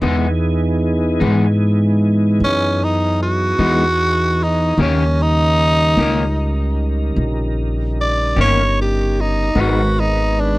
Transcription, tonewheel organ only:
0.02 4.75 E3 medium
0.02 4.75 B3 medium
0.02 4.75 D#4 medium
0.02 4.75 G#4 medium
4.77 9.51 C#3 medium
4.77 9.50 G3 medium
4.77 9.51 D#4 medium
4.77 9.50 A#4 medium
9.55 10.59 D#3 medium
9.55 10.59 G#3 medium
9.55 10.59 B3 medium
9.55 10.59 B4 medium

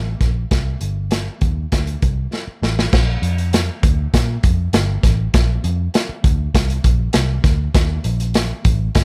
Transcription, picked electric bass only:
0.00 0.14 A1 medium
0.21 0.44 A#1 medium
0.51 0.74 C2 medium
0.81 1.28 G1 medium
1.42 1.65 D#2 medium
1.72 1.95 D2 medium
2.02 2.26 C2 medium
2.48 muted picked electric bass stroke soft
2.62 2.86 A1 medium
2.93 3.16 A#1 loud
3.22 3.69 F2 medium
3.83 4.06 D2 medium
4.14 4.37 A#2 loud
4.44 4.67 F2 medium
4.73 4.96 G1 medium
5.03 5.27 A1 medium
5.34 5.57 A#1 loud
5.64 5.87 F2 medium
6.09 muted picked electric bass stroke soft
6.24 6.47 D2 loud
6.54 6.78 C2 loud
6.84 7.08 A#1 medium
7.14 7.38 C2 medium
7.44 7.67 D2 medium
7.75 7.98 D#2 loud
8.05 8.51 A#1 medium
8.65 8.88 A1 loud
8.96 9.04 G1 loud

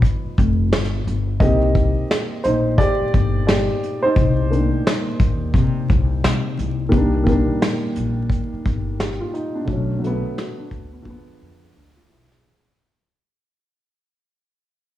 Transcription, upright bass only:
0.25 muted upright bass stroke soft
0.39 0.72 F1 loud
0.72 1.04 G1 medium
1.07 1.39 G1 medium
1.41 1.93 C2 loud
2.45 2.77 A#1 medium
3.01 muted upright bass stroke soft
3.15 3.66 G1 medium
4.17 4.69 C2 loud
5.20 5.52 D#2 medium
5.54 5.87 C3 loud
5.90 6.22 C2 medium
6.25 6.56 C3 loud
6.59 6.90 C2 medium
6.93 7.44 C2 medium
7.97 8.28 A#1 medium
8.53 muted upright bass stroke soft
8.66 9.17 G1 medium
9.68 10.20 B1 medium
10.72 11.04 D2 medium
11.06 11.26 E2 medium
11.28 muted upright bass stroke soft
11.42 11.73 F2 medium
11.76 12.08 D2 medium
12.11 12.42 B1 medium

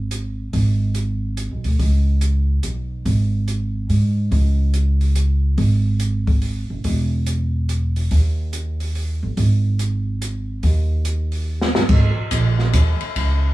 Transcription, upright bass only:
0.00 0.49 G#1 medium
0.53 1.47 G#1 medium
1.51 1.64 B1 medium
1.65 1.78 D2 medium
1.79 2.60 C#2 medium
2.64 3.03 B1 medium
3.05 3.86 G#1 medium
3.89 4.29 G#2 medium
4.31 5.54 C#2 medium
5.58 6.65 G#1 medium
6.70 6.84 F#1 medium
6.85 8.07 E1 medium
8.11 9.19 D#2 medium
9.23 9.37 G1 medium
9.37 10.60 G#1 medium
10.63 11.71 D#2 medium
11.75 11.89 G1 medium
11.89 12.15 G#1 medium
12.17 muted upright bass stroke soft
12.31 12.72 A#1 medium
12.74 12.99 D#2 medium
13.01 muted upright bass stroke soft
13.16 13.54 C#2 medium

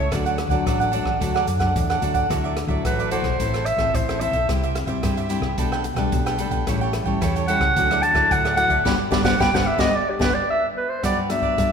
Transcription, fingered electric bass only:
0.12 0.47 D2 loud
0.49 0.62 D2 medium
0.66 1.01 A1 medium
1.03 1.17 A1 medium
1.21 1.45 D2 medium
1.47 1.73 F#2 medium
1.76 2.00 E2 medium
2.02 2.27 D2 medium
2.30 2.65 D2 loud
2.67 2.81 D2 medium
2.85 3.20 A1 medium
3.22 3.35 B1 medium
3.40 3.75 A1 medium
3.76 3.90 A1 medium
3.95 4.29 A1 medium
4.31 4.45 B1 medium
4.49 4.84 C2 loud
4.86 4.99 C2 medium
5.03 5.38 G2 medium
5.40 5.54 C2 medium
5.58 5.93 B1 medium
5.95 6.08 B1 medium
6.12 6.47 B1 medium
6.49 6.63 B1 medium
6.67 7.02 A1 loud
7.04 7.17 A1 medium
7.22 7.57 E2 medium
7.59 7.72 C#2 medium
7.77 8.11 D2 medium
8.13 8.27 D2 medium
8.31 8.66 D2 medium
8.68 8.81 D2 medium
8.86 8.96 G1 medium
9.11 9.22 G1 medium
9.22 9.34 G1 medium
9.40 9.50 G1 medium
9.55 9.65 G1 medium
9.77 9.89 G1 loud
10.20 10.31 G1 loud
11.04 11.50 G2 medium
11.58 11.72 G2 medium

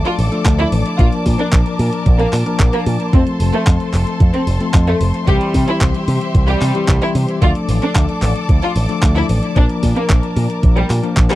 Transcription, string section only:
0.00 0.97 A4 medium
0.00 3.09 D5 medium
0.00 5.23 A5 medium
0.00 3.09 D6 loud
0.99 3.11 A#4 medium
3.13 5.25 A4 medium
3.13 7.38 C5 medium
3.13 7.38 C6 medium
5.28 7.40 G4 medium
5.28 7.40 E5 medium
7.42 9.54 A4 medium
7.42 11.35 D5 medium
7.42 11.35 A5 medium
7.42 11.35 D6 loud
9.56 11.35 A#4 medium

